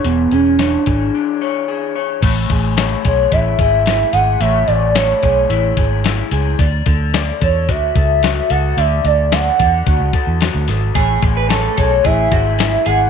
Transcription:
<<
  \new Staff \with { instrumentName = "Soft synth lead" } { \time 4/4 \key a \major \tempo 4 = 110 b8 cis'8 d'2~ d'8 r8 | r4. cis''8 e''4. fis''8 | e''8 d''8 cis''2 r4 | r4. cis''8 e''4. fis''8 |
e''8 d''8 fis''2 r4 | r4. cis''8 e''4. fis''8 | }
  \new Staff \with { instrumentName = "Clean electric guitar" } { \time 4/4 \key a \major <e d' gis' cis''>8 gis'8 cis''8 gis'8 d'8 cis''8 gis'8 cis''8 | <a cis''>8 gis'8 cis''8 gis'8 e'8 gis'8 e'8 gis'8 | <a cis''>8 gis'8 cis''8 gis'8 e'8 gis'8 e'8 gis'8 | d''8 a'8 d''8 a'8 fis'8 a'8 fis'8 a'8 |
<d d''>8 a'8 d''8 a'8 fis'8 a'8 fis'8 a'8 | <a cis''>8 gis'8 cis''8 gis'8 e'8 gis'8 e'8 gis'8 | }
  \new Staff \with { instrumentName = "Clean electric guitar" } { \time 4/4 \key a \major r1 | r1 | r1 | r1 |
r1 | gis'8 r16 b'16 a'8 a'16 r16 gis'8 fis'16 r8. gis'16 r16 | }
  \new Staff \with { instrumentName = "Fingered electric bass" } { \clef bass \time 4/4 \key a \major e,,8 e,,4 gis,,8 r2 | a,,8 a,,4 b,,8 a,,8 gis,,4 gis,,8 | a,,8 a,,4 b,,8 a,,8 gis,,4 cis,8 | d,8 d,4 e,8 d,8 cis,4 cis,8 |
d,8 d,4 e,8 d,16 cis,16 r16 e,8 d,16 gis,,8 | a,,8 a,,4 b,,8 a,,8 gis,,4 gis,,8 | }
  \new DrumStaff \with { instrumentName = "Drums" } \drummode { \time 4/4 hh8 hh8 <hh sn>8 <hh bd>8 r4 r4 | <cymc hh bd>8 <hh bd>8 <hh sn>8 <hh bd>8 <hh bd>8 <hh bd>8 <hh sn>8 hh8 | hh8 hh8 <hh sn>8 <hh bd>8 hh8 <hh bd>8 <hh sn>8 hh8 | <hh bd>8 <hh bd>8 <hh sn>8 <hh bd>8 <hh bd>8 <hh bd>8 <hh sn>8 hh8 |
hh8 hh8 <hh sn>8 <hh bd>8 <hh bd>8 <hh bd>8 <hh sn>8 <hh sn>8 | <hh bd>8 <hh bd>8 <hh sn>8 <hh bd>8 <hh bd>8 <hh bd>8 <hh sn>8 hh8 | }
>>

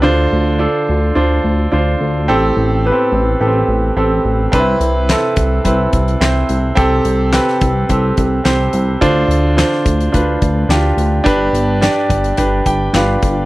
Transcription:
<<
  \new Staff \with { instrumentName = "Grand piano" } { \time 4/4 \key d \dorian \tempo 4 = 107 <d' f' c''>4 <d' f' a'>4 <d' f' c''>4 <d' f' c''>4 | <c' g' a'>4 <b c' g' b'>4 <b c' g' a'>4 <c' g' a'>4 | <c' d' e' b'>4 <c' e' a'>4 <c' e' b'>4 <c' e' c''>4 | <c' g' a'>4 <c' g' b'>4 <c' g' a'>4 <c' g' c''>4 |
<d' f' c''>4 <d' f' c''>4 <d' f' b'>4 <d' f' g'>4 | <d' g' b'>4 <d' g' d''>4 <d' g' b'>4 <d' g' b'>4 | }
  \new Staff \with { instrumentName = "Grand piano" } { \clef bass \time 4/4 \key d \dorian d4. r2 r8 | a,4. r2 r8 | c4. r2 r8 | c4. r2 r8 |
d4. r2 r8 | g,4. r4 <g' g''>8 <f' f''>4 | }
  \new Staff \with { instrumentName = "Analog synth bass" } { \clef bass \time 4/4 \key d \dorian d,8 d,8. r16 d,8 d,8 d,8 d,8 d,8 | a,,8 a,,8. r16 a,,8 a,,8 a,,8 a,,8 a,,8 | c,8 c,8. r16 c,8 c,8 c,8 c,8 c,8 | c,8 c,8. r16 c,8 c,8 c,8 c,8 c,8 |
d,8 d,8. r16 d,8 d,8 d,8 d,8 d,8 | g,,8 g,,8. r16 g,,8 g,,8 g,,8 g,,8 g,,8 | }
  \new DrumStaff \with { instrumentName = "Drums" } \drummode { \time 4/4 r4 r4 r4 r4 | r4 r4 r4 r4 | <hh bd>8 hh8 <hc hh sn>8 <hh bd>8 <hh bd>8 <hh bd>16 hh16 <hc hh sn>8 hh8 | <hh bd>8 hh8 <hc hh sn>16 sn16 <hh bd>8 <hh bd>8 <hh bd>8 <hc hh sn>8 hh8 |
<hh bd>8 hh8 <hc hh sn>16 sn16 <hh bd>16 hh16 <hh bd>8 <hh bd>8 <hc hh sn>8 hh8 | <hh bd>8 hh8 <hc hh sn>8 <hh bd>16 hh16 <hh bd>8 <hh bd>8 <hc hh sn>8 <hh bd>8 | }
>>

